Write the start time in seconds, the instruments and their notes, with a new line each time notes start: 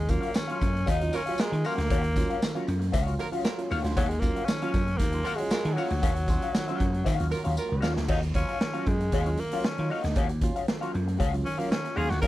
Already playing: slap bass D#2, tenor saxophone G#3
0.08 tine electric piano F#3 C#4 F4, tenor saxophone A#3, muted clean electric guitar stroke, kick, closed hi-hat, tambourine
0.21 tine electric piano C#4, clean electric guitar F#4 C#5 F5, closed hi-hat
0.25 tine electric piano F4
0.33 tine electric piano D#3, tenor saxophone C#4, muted clean electric guitar stroke, snare, tambourine
0.48 tine electric piano F#3 C#4 F4, clean electric guitar F#4 C#5 F5, closed hi-hat
0.61 slap bass F#2, tine electric piano C#4 F4, kick, closed hi-hat, tambourine
0.74 muted clean electric guitar stroke, closed hi-hat
0.86 slap bass D#2, tenor saxophone D#4, clean electric guitar F#4 C#5 F5, kick, closed hi-hat, tambourine
1.01 tine electric piano F#3 C#4 F4, closed hi-hat
1.12 tine electric piano D#3, horn section F#3 A#3 F4 A#4, tenor saxophone C#4, muted clean electric guitar stroke, closed hi-hat, tambourine
1.26 tine electric piano F#3 C#4 F4, clean electric guitar F#4 C#5 F5, closed hi-hat
1.38 horn section F#3 A#3 F4 A#4, tenor saxophone G#3, tine electric piano C#4 F4, snare, tambourine
1.52 slap bass D#3, tine electric piano D#3, muted clean electric guitar stroke, closed hi-hat
1.65 tine electric piano F#3 C#4 F4, tenor saxophone A#3, clean electric guitar F#4 C#5 F5, open hi-hat, tambourine
1.78 slap bass D2, muted clean electric guitar stroke, snare, closed hi-hat
1.90 slap bass D#2, tine electric piano D#3, clean electric guitar F#4 C#5 F5, kick, closed hi-hat
2.04 muted clean electric guitar stroke, closed hi-hat
2.16 tine electric piano F#3 C#4 F4, muted clean electric guitar stroke, kick, closed hi-hat, tambourine
2.30 tine electric piano C#4 F4, clean electric guitar F#4 C#5 F5, closed hi-hat
2.42 tine electric piano D#3, muted clean electric guitar stroke, snare, tambourine
2.55 tine electric piano F#3 C#4 F4, clean electric guitar F#4 C#5 F5, closed hi-hat
2.67 slap bass F#2, tine electric piano C#4 F4, muted clean electric guitar stroke, closed hi-hat, tambourine
2.80 muted clean electric guitar stroke, closed hi-hat
2.92 slap bass C#2, clean electric guitar F#4 C#5 F5, kick, closed hi-hat, tambourine
3.06 tine electric piano F#3 C#4 F4, closed hi-hat
3.19 tine electric piano D#3, horn section F#3 A#3 F4 A#4, muted clean electric guitar stroke, closed hi-hat, tambourine
3.32 tine electric piano F#3 C#4 F4, clean electric guitar F#4 C#5 F5, closed hi-hat
3.44 horn section F#3 A#3 F4 A#4, snare, tambourine
3.58 tine electric piano F#3 C#4 F4, muted clean electric guitar stroke, closed hi-hat
3.70 slap bass D#2, tine electric piano D#3, clean electric guitar F#4 C#5 F5, open hi-hat, tambourine
3.84 slap bass D2, tine electric piano F#3 C#4 F4, muted clean electric guitar stroke, snare, closed hi-hat
3.97 slap bass D#2, tine electric piano D#3, tenor saxophone F#3, clean electric guitar F#4 C#5 F5, kick, closed hi-hat
4.09 tenor saxophone G#3, muted clean electric guitar stroke, closed hi-hat
4.20 tine electric piano F#3 C#4 F4, tenor saxophone A#3, muted clean electric guitar stroke, kick, closed hi-hat, tambourine
4.35 tine electric piano C#4 F4, clean electric guitar F#4 C#5 F5, closed hi-hat
4.45 tine electric piano D#3, tenor saxophone C#4, snare, tambourine
4.62 tine electric piano F#3 C#4 F4, clean electric guitar F#4 C#5 F5, closed hi-hat
4.73 slap bass F#2, tine electric piano C#4 F4, muted clean electric guitar stroke, kick, closed hi-hat, tambourine
4.86 muted clean electric guitar stroke, closed hi-hat
4.97 slap bass D#2, tenor saxophone A#3, kick, closed hi-hat, tambourine
5.12 tine electric piano F#3 C#4 F4, muted clean electric guitar stroke, closed hi-hat
5.24 tine electric piano D#3, horn section F#3 A#3 F4 A#4, clean electric guitar F#4 C#5 F5, closed hi-hat, tambourine
5.36 tine electric piano F#3, tenor saxophone G#3, muted clean electric guitar stroke, closed hi-hat
5.40 tine electric piano C#4 F4
5.50 horn section F#3 A#3 F4 A#4, tine electric piano C#4 F4, snare, tambourine
5.65 slap bass D#3, tine electric piano D#3, muted clean electric guitar stroke, closed hi-hat
5.74 tenor saxophone F#3, tine electric piano F#3, clean electric guitar F#4 C#5, open hi-hat
5.78 tine electric piano C#4 F4, clean electric guitar F5, tambourine
5.90 slap bass D2, muted clean electric guitar stroke, closed hi-hat
6.02 slap bass D#2, tine electric piano D#3, clean electric guitar F#4 C#5 F5, kick, closed hi-hat, tambourine
6.16 muted clean electric guitar stroke, closed hi-hat
6.28 tine electric piano F#3 C#4 F4, muted clean electric guitar stroke, kick, closed hi-hat, tambourine
6.42 tine electric piano C#4 F4, clean electric guitar F#4 C#5 F5, closed hi-hat
6.54 tine electric piano D#3, muted clean electric guitar stroke, snare, tambourine
6.68 tine electric piano F#3 C#4 F4, clean electric guitar F#4 C#5 F5, closed hi-hat
6.79 slap bass F#2, tine electric piano C#4 F4, muted clean electric guitar stroke, kick, closed hi-hat
6.93 muted clean electric guitar stroke, closed hi-hat
7.04 slap bass D#3, clean electric guitar F#4 C#5 F5, kick, closed hi-hat, tambourine
7.20 slap bass D#2, tine electric piano F#3 C#4 F4, closed hi-hat
7.30 tine electric piano D#3, horn section F#3 A#3 F4 A#4, muted clean electric guitar stroke, closed hi-hat, tambourine
7.44 slap bass D#2, tine electric piano F#3 C#4 F4, clean electric guitar F#4 C#5 F5, closed hi-hat
7.57 horn section F#3 A#3 F4 A#4, tine electric piano C#4 F4, tambourine
7.69 slap bass C#2, tine electric piano D#3, muted clean electric guitar stroke
7.81 slap bass D#2, tine electric piano F#3 C#4 F4, clean electric guitar F#4 C#5 F5, snare, tambourine
7.95 slap bass D2, muted clean electric guitar stroke, snare
8.08 slap bass D#2, tine electric piano D#3, tenor saxophone D#4, clean electric guitar F#4 C#5 F5, kick, crash
8.22 muted clean electric guitar stroke, closed hi-hat
8.34 tine electric piano F#3 C#4 F4, tenor saxophone C#4, muted clean electric guitar stroke, kick, closed hi-hat
8.49 tine electric piano C#4 F4, clean electric guitar F#4 C#5 F5, closed hi-hat
8.61 tine electric piano D#3, snare
8.74 tine electric piano F#3 C#4 F4, clean electric guitar F#4 C#5 F5, closed hi-hat
8.86 slap bass F#2, tenor saxophone G#3, tine electric piano C#4 F4, muted clean electric guitar stroke, kick, closed hi-hat
9.01 muted clean electric guitar stroke, closed hi-hat
9.12 slap bass D#2, clean electric guitar F#4 C#5 F5, kick, closed hi-hat
9.26 tine electric piano F#3 C#4 F4, closed hi-hat
9.37 tine electric piano D#3, tenor saxophone A#3, muted clean electric guitar stroke, closed hi-hat
9.52 tine electric piano F#3 C#4 F4, clean electric guitar F#4 C#5 F5, closed hi-hat
9.64 tine electric piano D#3, tenor saxophone C#4, snare
9.78 slap bass D#3, tine electric piano F#3 C#4 F4, muted clean electric guitar stroke, closed hi-hat
9.90 tine electric piano C#4 F4, tenor saxophone D#4, clean electric guitar F#4 C#5 F5, open hi-hat
10.04 slap bass D2, muted clean electric guitar stroke, snare, closed hi-hat
10.16 slap bass D#2, tine electric piano D#3, clean electric guitar F#4 C#5 F5, kick, closed hi-hat
10.29 muted clean electric guitar stroke, closed hi-hat
10.41 tine electric piano F#3 C#4 F4, muted clean electric guitar stroke, kick, closed hi-hat
10.56 tine electric piano C#4 F4, clean electric guitar F#4 C#5 F5, closed hi-hat
10.67 tine electric piano D#3, muted clean electric guitar stroke, snare
10.81 tine electric piano F#3 C#4 F4, clean electric guitar F#4 C#5 F5, closed hi-hat
10.93 slap bass F#2, tine electric piano C#4 F4, muted clean electric guitar stroke, closed hi-hat
11.08 muted clean electric guitar stroke, closed hi-hat
11.19 slap bass C#2, clean electric guitar F#4 C#5 F5, kick, closed hi-hat
11.33 tine electric piano F#3 C#4 F4, closed hi-hat
11.45 tine electric piano D#3, tenor saxophone C#4, muted clean electric guitar stroke, closed hi-hat
11.58 tine electric piano F#3 C#4 F4, tenor saxophone A#3, clean electric guitar F#4 C#5 F5, closed hi-hat
11.70 tine electric piano D#3, tenor saxophone C#4, snare
11.84 muted clean electric guitar stroke, closed hi-hat
11.96 slap bass D#2, tine electric piano F#3 C#4 F4, clean electric guitar F#4 C#5 F5, tenor saxophone G#4, open hi-hat
12.10 slap bass D2, tine electric piano C#4 F4, tenor saxophone F#4, muted clean electric guitar stroke, snare, closed hi-hat
12.22 slap bass D#2, tine electric piano D#3, clean electric guitar F#4 C#5 F5, tenor saxophone A#4, kick, closed hi-hat